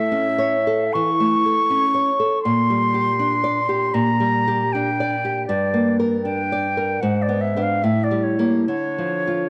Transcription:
0.00 0.89 A2 medium
0.00 0.27 A4 soft
0.00 0.94 E5 loud
0.12 0.55 C#4 medium
0.38 0.82 C#5 medium
0.67 1.09 A4 soft
0.93 1.35 E3 medium
0.93 2.42 C#6 loud
1.20 1.60 A3 medium
1.46 1.85 A4 medium
1.70 2.10 C#4 medium
1.94 2.34 C#5 medium
2.20 2.44 A4 soft
2.43 3.90 A#2 medium
2.43 3.95 C6 loud
2.70 3.09 G3 soft
2.94 3.34 G4 medium
3.19 3.59 D4 medium
3.44 3.84 D5 medium
3.69 4.10 G4 soft
3.94 5.45 A#2 medium
3.94 4.74 A#5 loud
4.20 4.62 G3 soft
4.48 4.89 G4 medium
4.73 5.15 D4 medium
4.73 5.47 G5 medium
5.00 5.40 D5 medium
5.25 5.49 G4 medium
5.47 6.98 G2 medium
5.47 5.96 D5 medium
5.74 6.15 A#3 soft
6.00 6.40 A#4 soft
6.23 6.66 D4 medium
6.23 7.02 G5 medium
6.52 6.93 D5 soft
6.77 7.03 A#4 soft
7.01 7.81 G#2 medium
7.01 7.23 F#5 medium
7.22 7.42 D5 medium
7.29 7.55 B3 soft
7.41 7.64 E5 medium
7.56 7.81 B3 soft
7.56 7.81 D4 soft
7.62 7.84 F5 medium
7.83 8.66 A2 medium
7.83 8.05 E5 medium
8.04 8.25 D5 medium
8.11 8.38 G3 soft
8.23 8.65 C#5 medium
8.39 8.65 G3 soft
8.39 8.65 A#3 soft
8.66 9.49 D3 medium
8.66 9.49 C#5 medium
8.98 9.44 F3 soft
9.27 9.49 F4 soft

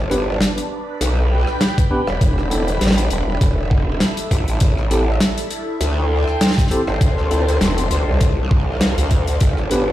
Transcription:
0.00 0.39 G1 loud
0.00 5.58 D4 medium
0.00 0.59 A5 medium
0.11 0.26 B3 medium
0.11 0.26 D4 medium
0.11 0.26 G4 medium
0.11 0.26 B4 medium
0.11 closed hi-hat medium
0.35 3.18 B4 medium
0.41 snare loud
0.41 closed hi-hat loud
0.58 closed hi-hat medium
0.91 3.18 G5 medium
0.91 4.61 B5 medium
1.01 1.45 B1 loud
1.01 closed hi-hat loud
1.47 cross-stick medium
1.61 snare loud
1.61 closed hi-hat medium
1.78 kick loud
1.78 closed hi-hat medium
1.91 2.00 B3 loud
1.91 2.00 D4 medium
1.91 2.00 G4 medium
1.91 2.00 B4 loud
2.07 2.19 E1 loud
2.07 cross-stick medium
2.21 2.79 E1 medium
2.21 kick loud
2.21 closed hi-hat medium
2.38 cross-stick soft
2.51 2.60 B3 medium
2.51 2.60 D4 medium
2.51 2.60 E4 medium
2.51 2.60 A4 loud
2.51 closed hi-hat medium
2.68 closed hi-hat medium
2.81 3.09 A1 loud
2.81 snare medium
2.81 closed hi-hat medium
2.87 snare medium
2.91 9.92 A4 medium
2.91 snare loud
2.98 5.58 E5 medium
2.98 closed hi-hat medium
3.11 3.25 E1 loud
3.11 closed hi-hat medium
3.27 3.39 E1 loud
3.41 3.99 E1 loud
3.41 kick loud
3.41 closed hi-hat medium
3.71 kick loud
4.00 snare loud
4.00 closed hi-hat medium
4.17 closed hi-hat medium
4.31 4.45 A1 loud
4.31 kick medium
4.31 closed hi-hat medium
4.48 4.59 A1 loud
4.48 closed hi-hat medium
4.60 5.19 A1 medium
4.60 7.01 E4 medium
4.60 kick loud
4.60 closed hi-hat medium
4.78 cross-stick soft
4.91 5.06 C4 medium
4.91 5.06 E4 medium
4.91 5.06 G4 medium
4.91 5.06 A4 medium
4.91 closed hi-hat medium
5.20 snare loud
5.20 closed hi-hat medium
5.38 closed hi-hat medium
5.51 closed hi-hat medium
5.70 7.98 G5 medium
5.70 9.41 C6 medium
5.81 6.25 D2 loud
5.81 closed hi-hat medium
6.28 cross-stick soft
6.41 snare loud
6.41 closed hi-hat loud
6.47 snare loud
6.51 snare medium
6.58 kick loud
6.58 snare medium
6.58 closed hi-hat medium
6.61 snare medium
6.67 snare soft
6.71 6.80 C4 loud
6.71 6.80 E4 medium
6.71 6.80 G4 medium
6.71 6.80 A4 loud
6.71 closed hi-hat medium
6.87 6.99 G1 loud
6.87 cross-stick medium
7.01 7.59 D2 loud
7.01 9.92 D4 medium
7.01 kick loud
7.01 closed hi-hat medium
7.18 cross-stick soft
7.31 7.40 C4 medium
7.31 7.40 E4 medium
7.31 7.40 F4 medium
7.31 7.40 A4 loud
7.31 closed hi-hat medium
7.49 closed hi-hat medium
7.61 7.89 F1 loud
7.61 snare loud
7.61 closed hi-hat medium
7.78 closed hi-hat medium
7.91 8.05 D2 medium
7.91 closed hi-hat medium
8.08 8.95 C2 loud
8.08 9.41 F5 medium
8.21 kick loud
8.21 closed hi-hat medium
8.51 kick loud
8.81 snare loud
8.81 closed hi-hat medium
8.98 9.39 D2 loud
8.98 closed hi-hat medium
9.11 kick medium
9.11 closed hi-hat medium
9.27 closed hi-hat medium
9.40 9.92 G1 medium
9.40 kick loud
9.40 closed hi-hat medium
9.52 9.92 B4 medium
9.57 cross-stick soft
9.71 9.86 B3 medium
9.71 9.86 D4 medium
9.71 9.86 G4 medium
9.71 9.86 B4 medium
9.71 closed hi-hat medium

